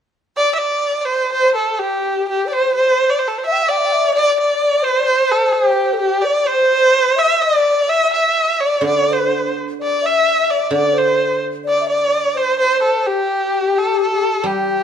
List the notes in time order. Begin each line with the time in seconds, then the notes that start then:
0.37 D5
0.55 D5 E5
1.01 D5
1.06 C5
1.31 C5
1.55 A4
1.79 G4
2.29 G4
2.46 D5
2.51 C5
2.76 C5
3.10 D5
3.19 C5
3.28 A4
3.38 C5
3.46 E5
3.52 G5
3.63 E5
3.68 D5 G5
3.78 E5
3.85 G5
3.93 E5
4.12 D5
4.35 D5
4.40 D5
4.82 C5
4.99 D5
5.06 C5
5.32 A4
5.52 G4
5.93 A4
6.00 G4
6.22 D5
6.46 C5
7.16 E5
7.39 D5
7.88 E5
8.14 E5
8.61 D5
8.81 D3
8.87 D5
9.11 C5
9.80 D5
10.02 E5
10.06 E5
10.51 D5
10.71 D3 D5
10.75 D5
10.94 C5
10.98 C5
11.64 D5
11.69 D5
11.80 E5
11.87 D5
12.35 C5
12.58 C5
12.83 A4
13.07 G4
13.78 A4
14.02 A4
14.44 G3 G4